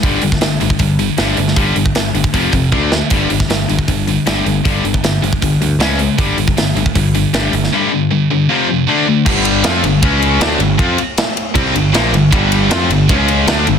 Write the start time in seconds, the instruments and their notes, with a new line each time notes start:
0.03 picked electric bass G1, distorted electric guitar G2 D3 G3, kick, open hi-hat
0.22 picked electric bass G1, distorted electric guitar G2 D3, open hi-hat
0.32 kick, snare
0.41 picked electric bass G1, distorted electric guitar G2 D3, snare, open hi-hat
0.60 picked electric bass G1, distorted electric guitar G2 D3, open hi-hat
0.70 kick
0.79 picked electric bass G1, distorted electric guitar G2 D3, kick, open hi-hat
0.99 distorted electric guitar G2 D3, open hi-hat
1.18 picked electric bass G1, distorted electric guitar G2 D3 G3, snare, open hi-hat
1.37 picked electric bass G1, distorted electric guitar G2 D3, open hi-hat
1.48 snare
1.56 picked electric bass G1, distorted electric guitar G2 D3 G3, kick, open hi-hat
1.76 picked electric bass G1, distorted electric guitar G2 D3, open hi-hat
1.86 kick
1.95 picked electric bass G1, distorted electric guitar G2 D3, snare, open hi-hat
2.15 picked electric bass G1, distorted electric guitar G2 D3, open hi-hat
2.24 kick
2.34 picked electric bass F1, distorted electric guitar F2 C3 F3, kick, open hi-hat
2.52 picked electric bass F1, distorted electric guitar F2 C3, kick, open hi-hat
2.72 picked electric bass D2, distorted electric guitar D3 A3 D4, kick
2.91 distorted electric guitar D3 A3, snare
3.10 picked electric bass G1, distorted electric guitar G2 D3 G3, kick, open hi-hat, crash
3.30 picked electric bass G1, distorted electric guitar G2 D3, open hi-hat
3.40 kick, snare
3.50 picked electric bass G1, distorted electric guitar G2 D3, snare, open hi-hat
3.69 picked electric bass G1, distorted electric guitar G2 D3, open hi-hat
3.79 kick
3.88 picked electric bass G1, distorted electric guitar G2 D3, kick, open hi-hat
4.08 distorted electric guitar G2 D3, open hi-hat
4.27 picked electric bass G1, distorted electric guitar G2 D3 G3, snare, open hi-hat
4.46 picked electric bass G1, distorted electric guitar G2 D3, open hi-hat
4.65 picked electric bass G1, distorted electric guitar G2 D3 G3, kick, open hi-hat
4.84 picked electric bass G1, distorted electric guitar G2 D3, open hi-hat
4.94 kick
5.03 picked electric bass G1, distorted electric guitar G2 D3, snare, open hi-hat
5.22 picked electric bass G1, distorted electric guitar G2 D3, open hi-hat
5.33 kick
5.42 picked electric bass G1, distorted electric guitar G2 D3, kick, open hi-hat
5.61 picked electric bass D2, distorted electric guitar G2 D3, open hi-hat
5.79 picked electric bass C#2, distorted electric guitar C#3 G#3 C#4, snare, open hi-hat
5.99 distorted electric guitar C#3 G#3, open hi-hat
6.18 picked electric bass G1, distorted electric guitar G2 D3 G3, kick, open hi-hat
6.38 picked electric bass G1, distorted electric guitar G2 D3, open hi-hat
6.48 kick
6.57 picked electric bass G1, distorted electric guitar G2 D3, snare, open hi-hat
6.75 picked electric bass G1, distorted electric guitar G2 D3, open hi-hat
6.86 kick
6.95 picked electric bass G1, distorted electric guitar G2 D3, kick, open hi-hat
7.14 distorted electric guitar G2 D3, open hi-hat
7.34 picked electric bass G1, distorted electric guitar G2 D3 G3, snare, open hi-hat
7.53 picked electric bass G1, distorted electric guitar G2 D3, open hi-hat
7.64 snare
7.72 distorted electric guitar G2 D3 G3
7.92 distorted electric guitar G2 D3
8.11 distorted electric guitar G2 D3
8.30 distorted electric guitar G2 D3
8.49 distorted electric guitar F2 C3 F3
8.68 distorted electric guitar F2 C3
8.87 distorted electric guitar D3 A3 D4
9.07 distorted electric guitar D3 A3
9.26 picked electric bass G1, distorted electric guitar G2 D3 G3, kick, crash
9.45 ride
9.64 picked electric bass F2, distorted electric guitar F3 C4 F4, snare, ride
9.83 picked electric bass G1, distorted electric guitar G2 D3, ride
10.02 picked electric bass C#2, distorted electric guitar C#3 G#3 C#4, kick, ride
10.22 ride
10.40 picked electric bass D2, distorted electric guitar D3 A3 D4, snare, ride
10.59 picked electric bass G1, distorted electric guitar G2 D3, ride
10.78 picked electric bass F2, distorted electric guitar F3 C4 F4, kick, ride
10.98 ride
11.18 snare, ride
11.37 ride
11.54 picked electric bass C2, distorted electric guitar C3 G3 C4, kick, ride
11.74 picked electric bass G1, distorted electric guitar G2 D3, ride
11.92 picked electric bass A#1, distorted electric guitar A#2 F3 A#3, snare, ride
12.12 picked electric bass G1, distorted electric guitar G2 D3, ride
12.31 picked electric bass G1, distorted electric guitar G2 D3 G3, kick, ride
12.52 ride
12.69 picked electric bass F2, distorted electric guitar F3 C4 F4, snare, ride
12.89 picked electric bass G1, distorted electric guitar G2 D3, ride
13.08 picked electric bass C#2, distorted electric guitar C#3 G#3 C#4, kick, ride
13.28 ride
13.47 picked electric bass D2, distorted electric guitar D3 A3 D4, snare, ride
13.66 picked electric bass G1, distorted electric guitar G2 D3, ride